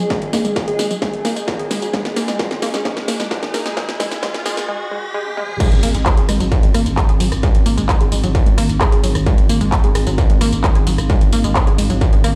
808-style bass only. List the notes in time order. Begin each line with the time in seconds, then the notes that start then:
5.72 G#1
5.83 G#1
5.95 G#1
6.18 G#1
6.29 G#1
6.40 G#1
6.63 G#1
6.75 G#1
6.86 G#1
7.09 G#1
7.20 G#1
7.32 G#1
7.55 G#1
7.66 G#1
7.78 G#1
8.01 G#1
8.12 G#1
8.24 G#1
8.46 G#1
8.58 G#1
8.69 G#1
8.92 G#1
9.03 G#1
9.15 G#1
9.38 G#1
9.49 G#1
9.61 G#1
9.84 G#1
9.95 G#1
10.07 G#1
10.30 G#1
10.41 G#1
10.53 G#1
10.75 G#1
10.87 G#1
10.98 G#1
11.21 G#1
11.32 G#1
11.44 G#1
11.67 G#1
11.78 G#1
11.90 G#1
12.13 G#1
12.24 G#1